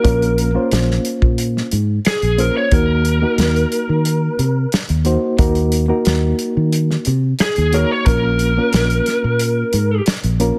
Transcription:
0.00 0.50 A#3 medium
0.00 0.50 C#4 medium
0.00 0.68 A#4 medium
0.04 0.56 A#1 medium
0.04 0.50 F4 medium
0.04 0.50 A#4 medium
0.04 kick loud
0.04 closed hi-hat medium
0.22 closed hi-hat soft
0.38 closed hi-hat medium
0.54 1.75 A#3 medium
0.54 1.75 C#4 medium
0.54 1.75 F4 medium
0.54 1.75 C5 medium
0.71 0.98 A#1 medium
0.71 snare medium
0.71 closed hi-hat medium
0.91 snare soft
1.05 closed hi-hat medium
1.22 1.60 A#2 medium
1.22 kick medium
1.38 closed hi-hat medium
1.57 snare soft
1.71 1.98 G#2 medium
1.71 closed hi-hat medium
2.05 2.39 G#4 medium
2.05 snare loud
2.05 closed hi-hat medium
2.22 2.48 A#1 medium
2.22 closed hi-hat soft
2.37 2.68 A#3 medium
2.37 2.68 C#4 medium
2.37 2.69 F4 medium
2.37 2.56 A#4 medium
2.37 2.69 C5 medium
2.37 closed hi-hat medium
2.57 2.73 C#5 medium
2.71 3.23 D#2 medium
2.71 3.17 A#3 medium
2.71 3.18 D#4 medium
2.71 3.18 F#4 medium
2.71 3.18 A#4 medium
2.71 4.69 A#4 medium
2.71 kick loud
2.71 closed hi-hat medium
3.05 closed hi-hat medium
3.22 4.42 A#3 medium
3.22 4.42 D#4 medium
3.22 4.43 F#4 medium
3.22 4.43 A#4 medium
3.38 3.64 D#2 medium
3.38 snare loud
3.38 closed hi-hat medium
3.56 closed hi-hat soft
3.72 closed hi-hat medium
3.89 4.28 D#3 medium
4.05 closed hi-hat medium
4.39 4.65 C3 medium
4.39 closed hi-hat medium
4.72 snare loud
4.72 closed hi-hat medium
4.89 5.16 D#2 medium
4.89 closed hi-hat soft
5.05 5.36 A#3 medium
5.05 5.36 D#4 medium
5.05 5.36 F#4 medium
5.05 5.36 C5 medium
5.05 closed hi-hat medium
5.38 5.90 D#2 medium
5.38 5.84 A#3 medium
5.38 5.85 D#4 medium
5.38 5.85 F#4 medium
5.38 5.85 A#4 medium
5.38 kick loud
5.38 closed hi-hat medium
5.55 closed hi-hat soft
5.72 closed hi-hat medium
5.88 7.09 A#3 medium
5.88 7.09 D#4 medium
5.88 7.09 F#4 medium
5.88 7.10 A#4 medium
6.05 6.32 D#2 medium
6.05 snare loud
6.05 closed hi-hat medium
6.39 closed hi-hat medium
6.57 6.95 D#3 medium
6.73 closed hi-hat medium
6.91 snare soft
7.05 7.33 C3 medium
7.05 closed hi-hat medium
7.39 7.73 G#4 medium
7.39 snare loud
7.39 closed hi-hat medium
7.56 7.83 D#2 medium
7.56 closed hi-hat soft
7.72 8.03 A#3 medium
7.72 8.03 D#4 medium
7.72 8.04 F#4 medium
7.72 7.91 A#4 medium
7.72 8.04 C#5 medium
7.72 closed hi-hat medium
7.91 8.06 C#5 medium
8.06 8.58 A#1 medium
8.06 8.52 A#3 medium
8.06 8.52 C#4 medium
8.06 8.52 F4 medium
8.06 10.03 A#4 medium
8.06 8.53 A#4 medium
8.06 kick loud
8.06 closed hi-hat medium
8.39 closed hi-hat medium
8.57 9.77 A#3 medium
8.57 9.77 C#4 medium
8.57 9.77 F4 medium
8.57 9.78 A#4 medium
8.73 8.99 A#1 medium
8.73 snare loud
8.73 closed hi-hat medium
8.90 closed hi-hat soft
9.06 snare soft
9.06 closed hi-hat medium
9.24 9.62 A#2 medium
9.39 closed hi-hat medium
9.73 9.99 G#2 medium
9.73 closed hi-hat medium
10.06 snare loud
10.06 closed hi-hat medium
10.24 10.50 A#1 medium
10.24 closed hi-hat soft
10.40 10.59 A#3 medium
10.40 10.59 C#4 medium
10.40 10.59 F4 medium
10.40 10.59 A#4 medium
10.40 closed hi-hat medium

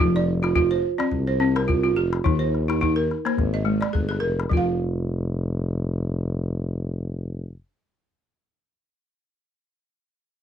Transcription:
0.00 0.88 F1 loud
0.00 0.28 F3 medium
0.00 0.14 D#4 medium
0.00 0.41 F4 medium
0.00 calabash thump medium
0.16 0.56 D5 medium
0.43 0.54 F4 medium
0.43 calabash click soft
0.56 0.84 F4 medium
0.56 calabash thump medium
0.71 1.12 C5 medium
0.98 1.27 C4 medium
0.98 1.40 D5 medium
0.98 calabash click medium
1.11 1.99 C2 loud
1.11 calabash thump medium
1.27 1.68 C5 medium
1.40 1.68 C4 medium
1.56 1.97 A#4 medium
1.56 calabash click medium
1.68 1.82 F4 medium
1.68 calabash thump medium
1.84 2.12 F4 medium
1.96 2.20 F1 medium
1.96 2.41 G4 medium
2.13 calabash click soft
2.24 3.14 D#2 medium
2.24 2.53 D#3 medium
2.24 2.67 D#4 medium
2.24 calabash thump medium
2.24 calabash click soft
2.39 2.81 C5 medium
2.55 calabash click soft
2.68 2.80 D#4 medium
2.68 calabash click soft
2.81 3.09 D#4 medium
2.81 calabash thump medium
2.81 calabash click soft
2.96 3.37 A#4 medium
3.11 calabash click soft
3.25 3.38 A#3 medium
3.25 3.54 C5 medium
3.25 calabash click medium
3.38 3.82 G#1 medium
3.38 calabash thump medium
3.38 calabash click soft
3.54 3.94 D#5 medium
3.65 3.94 G#3 medium
3.81 4.22 D5 medium
3.81 calabash click medium
3.93 4.19 G1 medium
3.93 4.07 G#4 medium
3.93 calabash thump medium
4.09 4.38 G#4 medium
4.09 calabash click soft
4.20 4.48 F1 medium
4.20 4.65 A#4 medium
4.40 calabash click soft
4.49 7.52 F1 medium
4.49 8.26 F3 medium
4.49 8.28 F4 medium
4.49 calabash thump medium
4.57 8.30 F5 medium

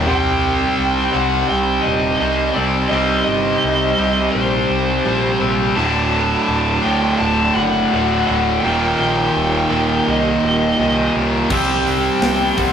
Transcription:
0.07 0.65 C2 medium
0.07 1.16 C3 medium
0.07 5.73 C3 medium
0.07 5.73 G3 medium
0.07 1.14 G3 medium
0.07 5.73 C4 medium
0.07 1.13 C4 loud
0.07 5.73 D#4 medium
0.07 1.13 G5 loud
0.78 1.07 C2 medium
1.13 1.43 C2 loud
1.13 2.18 C3 medium
1.13 2.18 G3 medium
1.13 2.18 C4 medium
1.13 1.48 F#5 loud
1.49 1.78 C2 loud
1.49 1.85 G5 loud
1.81 2.16 D#5 loud
1.86 2.14 D#1 loud
2.17 2.89 C3 medium
2.17 2.53 D#5 medium
2.21 2.49 C2 loud
2.21 2.90 G3 medium
2.21 2.90 C4 medium
2.53 2.85 C2 medium
2.53 2.89 C3 medium
2.53 2.89 G3 medium
2.53 2.89 C4 medium
2.53 2.88 D5 medium
2.89 3.20 C2 loud
2.89 3.96 C3 medium
2.89 3.96 G3 loud
2.89 3.22 D#5 loud
2.93 3.97 C4 loud
3.23 4.31 D#5 loud
3.27 3.56 G1 medium
3.64 3.92 C2 medium
3.98 4.27 C2 medium
3.98 5.04 C3 medium
3.98 5.04 G3 medium
3.98 5.03 C4 medium
4.32 4.63 A#1 medium
4.32 5.36 C5 medium
4.69 4.98 C2 medium
5.05 5.34 A#1 medium
5.05 5.74 C3 medium
5.05 5.75 G3 medium
5.05 5.76 C4 medium
5.40 5.70 A#1 loud
5.40 5.76 C3 medium
5.40 5.75 G3 medium
5.40 5.74 C4 medium
5.75 6.34 D1 loud
5.75 6.81 D2 medium
5.75 6.82 A2 loud
5.75 8.60 D3 medium
5.75 6.81 D3 loud
5.75 8.60 F#3 medium
5.75 8.60 A3 medium
5.75 8.59 D4 medium
5.75 6.83 A5 loud
6.48 6.77 D1 loud
6.82 7.13 D2 medium
6.82 7.90 D2 medium
6.82 7.89 A2 medium
6.82 7.88 D3 medium
6.82 7.18 G5 loud
7.19 7.49 D1 loud
7.19 7.52 A5 loud
7.54 7.85 F#1 loud
7.54 7.92 F#5 medium
7.92 8.21 D1 medium
7.92 8.61 D2 medium
7.92 8.62 A2 medium
7.92 8.62 D3 medium
7.92 8.26 F#5 medium
8.28 8.57 D1 medium
8.28 8.62 D2 medium
8.28 8.62 A2 medium
8.28 8.61 D3 medium
8.28 8.60 F#5 loud
8.61 8.93 D#1 loud
8.61 9.68 D#2 medium
8.61 9.69 A#2 loud
8.61 11.47 D#3 medium
8.61 11.47 A#3 medium
8.61 12.72 D#4 medium
8.61 11.47 G4 medium
8.61 8.97 G5 loud
8.66 9.69 D#3 loud
8.98 9.28 A#1 medium
8.98 10.09 G5 loud
9.36 9.64 D#1 medium
9.70 10.00 D#1 medium
9.70 10.77 D#2 medium
9.70 10.76 A#2 medium
9.70 10.76 D#3 medium
10.08 10.36 C2 medium
10.08 11.12 D#5 medium
10.43 10.72 D#1 loud
10.78 11.08 C2 medium
10.78 11.48 D#2 medium
10.78 11.48 A#2 medium
10.78 11.49 D#3 medium
11.15 11.44 C2 medium
11.15 11.49 D#2 medium
11.15 11.49 A#2 medium
11.15 11.48 D#3 medium
11.50 12.08 C2 medium
11.50 12.72 C3 medium
11.50 12.59 C3 medium
11.50 12.72 G3 medium
11.50 12.58 G3 loud
11.50 12.72 C4 medium
11.50 12.56 C4 loud
11.50 12.58 G5 loud
11.50 kick loud
11.50 crash loud
11.87 open hi-hat medium
12.21 12.50 C2 medium
12.21 snare loud
12.21 open hi-hat medium
12.57 12.72 C2 medium
12.57 12.72 C3 medium
12.57 12.72 G3 medium
12.57 12.72 C4 medium
12.57 12.72 F#5 medium
12.57 kick medium
12.57 open hi-hat medium

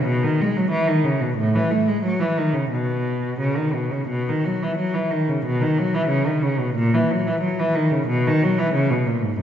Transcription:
0.05 0.22 B2 medium
0.23 0.39 D#3 medium
0.41 0.56 G#3 medium
0.57 0.72 F#3 medium
0.71 0.87 E3 medium
0.87 1.04 D#3 soft
1.04 1.20 C#3 soft
1.21 1.37 B2 soft
1.37 1.53 A2 medium
1.55 1.70 E3 medium
1.71 1.87 A3 soft
1.88 2.04 G#3 soft
2.03 2.20 F#3 medium
2.20 2.37 E3 soft
2.38 2.55 D#3 soft
2.54 2.71 C#3 soft
2.70 3.39 B2 soft
3.40 3.57 C#3 soft
3.56 3.74 D#3 soft
3.74 3.92 B2 soft
3.91 4.09 C#3 soft
4.08 4.26 B2 medium
4.29 4.45 D#3 soft
4.45 4.61 F#3 soft
4.62 4.79 E3 soft
4.78 4.94 F#3 soft
4.94 5.11 E3 soft
5.11 5.28 D#3 soft
5.29 5.45 C#3 soft
5.45 5.61 B2 medium
5.61 5.78 D#3 soft
5.78 5.95 F#3 soft
5.94 6.11 E3 medium
6.09 6.26 C#3 medium
6.26 6.43 D#3 soft
6.42 6.60 C#3 soft
6.59 6.77 B2 soft
6.75 6.93 A#2 medium
6.94 7.10 E3 soft
7.11 7.27 F#3 soft
7.27 7.43 E3 soft
7.41 7.58 F#3 medium
7.60 7.77 E3 soft
7.75 7.93 D#3 soft
7.91 8.10 C#3 soft
8.07 8.26 B2 medium
8.27 8.44 D#3 medium
8.43 8.60 F#3 medium
8.59 8.76 E3 medium
8.74 8.91 C#3 medium
8.91 9.08 B2 soft
9.07 9.24 A#2 soft
9.22 9.39 G#2 soft
9.38 9.42 F#2 medium

